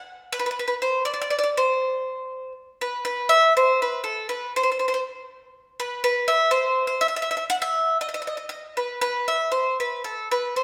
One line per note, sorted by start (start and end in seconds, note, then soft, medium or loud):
0.32 0.38 B4 loud
0.39 0.45 B4 medium
0.46 0.50 B4 medium
0.51 0.58 B4 medium
0.59 0.66 B4 medium
0.68 0.74 B4 medium
0.82 1.03 C5 medium
1.05 1.12 D5 medium
1.14 1.20 D5 medium
1.22 1.28 D5 medium
1.30 1.36 D5 medium
1.39 1.42 D5 medium
1.44 1.49 D5 medium
1.57 2.52 C5 loud
2.81 3.04 B4 medium
3.05 3.32 B4 loud
3.29 3.53 E5 loud
3.57 3.80 C5 medium
3.82 4.03 B4 medium
4.04 4.28 A4 medium
4.29 4.52 B4 medium
4.56 4.62 C5 loud
4.63 4.70 C5 medium
4.72 4.78 C5 medium
4.79 4.85 C5 medium
4.88 4.93 C5 medium
4.94 4.99 C5 medium
5.80 6.01 B4 loud
6.04 6.30 B4 loud
6.28 6.50 E5 loud
6.51 6.86 C5 loud
6.87 6.99 C5 medium
7.01 7.07 E5 loud
7.08 7.15 E5 medium
7.16 7.21 E5 medium
7.22 7.29 E5 medium
7.31 7.36 E5 medium
7.37 7.44 E5 medium
7.50 7.55 F#5 loud
7.62 7.97 E5 medium
8.01 8.07 D#5 medium
8.09 8.13 D#5 medium
8.14 8.21 D#5 medium
8.22 8.26 D#5 medium
8.27 8.36 D#5 medium
8.37 8.45 D#5 medium
8.49 8.75 D#5 medium
8.77 9.00 B4 medium
9.01 9.29 B4 loud
9.28 9.51 E5 medium
9.52 9.76 C5 medium
9.80 10.02 B4 medium
10.04 10.28 A4 medium
10.31 10.55 B4 medium
10.56 10.62 C5 medium